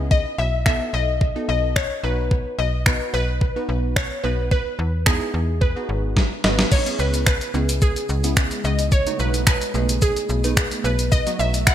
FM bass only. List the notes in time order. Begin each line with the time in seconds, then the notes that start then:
Already playing: C#2
0.38 B1
0.93 B1
1.49 B1
2.04 B1
2.59 B1
3.14 B1
3.69 B1
4.24 B1
4.79 E2
5.34 E2
5.89 G#1
6.44 G#1
6.99 C#2
7.54 C#2
8.09 C#2
8.64 C#2
9.19 B1
9.74 B1
10.29 B1
10.84 B1
11.39 B1